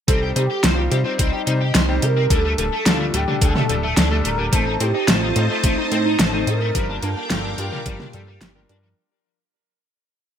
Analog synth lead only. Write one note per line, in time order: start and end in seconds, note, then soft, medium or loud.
0.08 0.21 A4 loud
0.36 0.65 G4 loud
0.63 1.19 F4 loud
1.20 2.04 D#4 loud
2.02 2.32 A#4 loud
2.31 2.58 A4 loud
2.59 2.88 A4 loud
2.86 3.14 F4 loud
3.14 3.40 G4 loud
3.42 4.21 A4 loud
4.25 4.55 A#4 loud
4.54 4.83 A4 loud
4.81 5.10 G4 loud
5.09 5.66 F4 loud
5.65 6.48 D#4 medium
6.48 7.05 A#4 loud
7.04 7.31 A4 loud
7.31 7.60 A4 loud
7.59 8.70 G4 medium